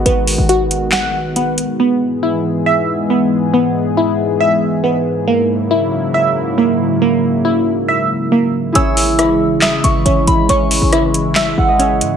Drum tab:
HH |xoxxx-xx|--------|--------|--------|
CP |----x---|--------|--------|--------|
SD |----o---|--------|--------|--------|

HH |--------|xox-xxxx|xoxxx-xx|
CP |--------|----x---|----x---|
SD |--------|--r-o---|--r-o---|